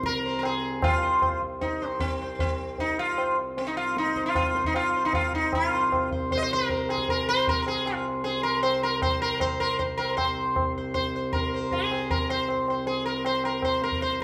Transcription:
Already playing: harmonium C2 C3
0.03 sitar A#4, tabla ke
0.26 sitar C5
0.39 sitar A#4
0.43 sitar G#4, tabla na
0.82 harmonium C2 C3, sitar F4 C5, tabla na, tabla ge
1.03 sitar C5
1.22 sitar C5, tabla na, tabla ge
1.41 tabla ge
1.61 sitar D#4, tabla tin, tabla ge
1.82 sitar C5
1.88 sitar C4
2.00 sitar C4, tabla tin, tabla ge
2.22 sitar C5
2.39 sitar C4, tabla tin, tabla ge
2.78 sitar D#4, tabla tin, tabla ge
2.99 sitar F4
3.18 sitar C5, tabla na
3.57 sitar C4, tabla tin
3.67 sitar D#4
3.77 sitar F4
3.97 sitar D#4, tabla te
4.06 tabla te
4.16 sitar C5, tabla ke
4.26 sitar F4, tabla te
4.35 sitar F4, tabla na, tabla ge
4.55 sitar C5, tabla te
4.64 sitar D#4, tabla ge
4.75 sitar F4, tabla na
4.96 sitar C5
5.05 sitar D#4
5.13 sitar F4, tabla na, tabla ge
5.33 sitar D#4, tabla ge
5.53 harmonium C2 C3, sitar F4, tabla na, tabla ge
5.75 sitar C5
5.92 tabla na, tabla ge
6.11 sitar C5, tabla ge
6.31 sitar C5, tabla tin, tabla ge
6.37 sitar D#5
6.43 sitar C5
6.53 sitar A#4
6.69 sitar C5, tabla tin, tabla ge
6.89 sitar G#4, tabla na
6.98 tabla ke
7.08 sitar A#4, tabla tin, tabla ge
7.29 sitar C5
7.47 sitar A#4, tabla tin, tabla ge
7.62 sitar A#4
7.66 sitar G#4, tabla na
7.86 sitar F4, tabla na
8.24 sitar G#4 C5, tabla tin
8.43 sitar A#4 C5
8.63 sitar C5, tabla na
8.83 sitar A#4
9.02 sitar C5, tabla na, tabla ge
9.22 sitar A#4 C5
9.40 sitar C5, tabla na, tabla ge
9.60 sitar A#4 C5, tabla ge
9.79 sitar C5, tabla tin, tabla ge
9.98 sitar A#4 C5, tabla na
10.17 harmonium C2 C3, sitar C5, tabla na, tabla ge
10.56 tabla na, tabla ge
10.76 sitar C5, tabla ge
10.94 sitar C5, tabla tin, tabla ge
11.16 sitar C5
11.33 sitar A#4, tabla tin, tabla ge
11.54 sitar C5
11.72 sitar G#4, tabla tin, tabla ge
11.91 sitar C5, tabla na
12.10 sitar A#4, tabla tin, tabla ge
12.30 sitar C5, tabla na
12.48 sitar C5, tabla na
12.68 sitar C5, tabla na
12.87 sitar G#4, tabla tin
13.06 sitar A#4
13.25 sitar C5, tabla na
13.44 sitar A#4, tabla na
13.62 sitar C5, tabla na, tabla ge
13.82 sitar A#4, tabla te
13.92 tabla ge
14.01 sitar C5, tabla te
14.11 tabla te
14.20 tabla ke

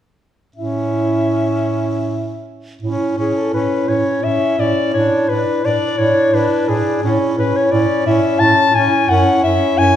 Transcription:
0.55 bass clarinet A2, tenor saxophone C#4, clarinet E4, soprano saxophone E5
2.81 bass clarinet A2, tenor saxophone C#4, clarinet E4
3.17 bass clarinet A2, tenor saxophone C#4, clarinet E4, soprano saxophone G#4
3.36 soprano saxophone A4
3.52 bass clarinet A2, tenor saxophone C#4, clarinet E4, soprano saxophone B4
3.87 bass clarinet A2, tenor saxophone C#4, clarinet E4, soprano saxophone C#5
4.23 bass clarinet A2, tenor saxophone C#4, clarinet E4, soprano saxophone E5
4.59 bass clarinet A2, tenor saxophone C#4, clarinet E4, soprano saxophone D5
4.94 bass clarinet A2, tenor saxophone D4, clarinet E4, soprano saxophone C#5
5.29 bass clarinet A2, tenor saxophone D4, clarinet E4, soprano saxophone B4
5.64 bass clarinet A2, tenor saxophone D4, clarinet E4, soprano saxophone D5
5.98 bass clarinet A2, tenor saxophone D4, clarinet E4, soprano saxophone C#5
6.32 bass clarinet A2, tenor saxophone D4, clarinet E4, soprano saxophone B4
6.67 bass clarinet A2, tenor saxophone D4, clarinet E4, soprano saxophone G#4
7.02 bass clarinet A2, tenor saxophone C#4, clarinet E4
7.36 bass clarinet A2, tenor saxophone C#4, clarinet E4, soprano saxophone B4
7.56 soprano saxophone C#5
7.70 bass clarinet A2, tenor saxophone C#4, clarinet E4, soprano saxophone D5
8.04 bass clarinet A2, tenor saxophone C#4, clarinet E4, soprano saxophone E5
8.39 bass clarinet A2, tenor saxophone C#4, clarinet E4, soprano saxophone A5
8.73 bass clarinet A2, tenor saxophone C#4, clarinet E4, soprano saxophone G#5
9.08 bass clarinet F#2, tenor saxophone C#4, clarinet E4, soprano saxophone F#5
9.43 bass clarinet F#2, tenor saxophone C#4, clarinet E4, soprano saxophone E5
9.77 bass clarinet F#2, tenor saxophone C#4, clarinet E4, soprano saxophone G#5

